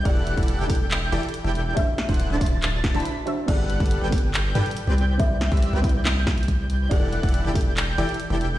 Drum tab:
CC |--------------------------------|--------------------------------|x-------------------------------|--------------------------------|
HH |x---x-xxx---ox--x---x-xxx---x---|x---x-xxx---ox--x---x-xxx---x---|x---x-xxx---o---x---x-xxx---x---|x---x-xxx---ox--x---x-xxx---x---|
CP |----------------x---------------|----------------x---------------|----------------x---------------|----------------x---------------|
SD |--------------------------------|----o---------------o-----------|--------------------------------|----o-----------o---o-----------|
BD |o-----o-----o-------------------|o-----o-----o-------o-----------|o-----o-----o-------------------|o-----o-----o-------o---o-------|

CC |--------------------------------|
HH |x---x-xxx---ox--x---x-xxx---x---|
CP |----------------x---------------|
SD |--------------------------------|
BD |o-----o-----o-------------------|